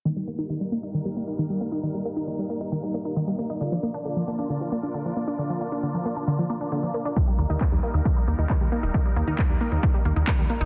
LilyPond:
<<
  \new Staff \with { instrumentName = "Supersaw synth" } { \time 4/4 \key ees \major \tempo 4 = 135 <g bes ees' bes'>1~ | <g bes ees' bes'>1 | <d' f' d''>1~ | <d' f' d''>1 |
<g ees' bes'>1~ | <g ees' bes'>1 | }
  \new Staff \with { instrumentName = "Synth arpeggio sound" } { \clef bass \time 4/4 \key ees \major ees16 g16 bes16 ees'16 ees16 g16 bes16 ees'16 ees16 g16 bes16 ees'16 ees16 g16 bes16 ees'16 | ees16 g16 bes16 ees'16 ees16 g16 bes16 ees'16 ees16 g16 bes16 ees'16 ees16 g16 bes16 ees'16 | d16 f16 bes16 d'16 d16 f16 bes16 d'16 d16 f16 bes16 d'16 d16 f16 bes16 d'16 | d16 f16 bes16 d'16 d16 f16 bes16 d'16 d16 f16 bes16 d'16 d16 f16 bes16 d'16 |
ees16 g16 bes16 ees'16 ees16 g16 bes16 ees'16 ees16 g16 bes16 ees'16 ees16 g16 bes16 ees'16 | ees16 g16 bes16 ees'16 ees16 g16 bes16 ees'16 ees16 g16 bes16 ees'16 ees16 g16 bes16 ees'16 | }
  \new Staff \with { instrumentName = "Analog synth bass" } { \clef bass \time 4/4 \key ees \major r1 | r1 | r1 | r1 |
r8 ees,16 ees,16 r16 ees,16 r16 ees,16 r8 ees,16 ees,16 r16 ees,16 r16 ees,,16 | r8 ees,16 ees,16 r16 ees,16 r16 ees,16 r8 ees,16 ees,16 r16 ees,16 r16 ees,,16 | }
  \new DrumStaff \with { instrumentName = "Drums" } \drummode { \time 4/4 hh16 hh16 hh16 hh16 hh16 hh16 hh16 hh16 hh8 hh16 hh16 hh16 hh16 hh16 hh16 | hh16 hh16 hh16 hh16 hh16 hh16 hh16 hh16 hh8 hh16 hh16 hh16 hh16 hh16 hh16 | hh16 hh16 hh16 hh16 hh16 hh16 hh16 hh16 hh8 hh16 hh16 hh16 hh16 hh16 hh16 | hh16 hh16 hh16 hh16 hh16 hh16 hh16 hh16 hh16 hh16 hh16 hh16 hh16 hh16 hh16 hh16 |
<hh bd>16 hh16 hh16 hh16 <hc hh bd>16 hh16 hh16 hh16 <hh bd>8 hh16 hh16 <hc hh bd>16 hh16 hh16 hh16 | <hh bd>16 hh16 hh16 hh16 <hc hh bd>16 hh16 hh16 hh16 <hh bd>8 hh16 hh16 <hc hh bd>16 hh16 hh16 hh16 | }
>>